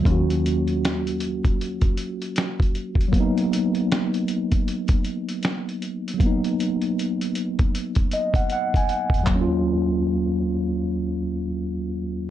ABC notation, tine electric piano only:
X:1
M:4/4
L:1/16
Q:"Swing 16ths" 1/4=78
K:Ebm
V:1 name="Tine electric piano"
z16 | z16 | z8 z2 e g g a g2 | z16 |]
V:2 name="Tine electric piano"
[G,B,DG]16 | [G,B,CE]16 | [G,B,CE]16 | [E,,G,B,DF]16 |]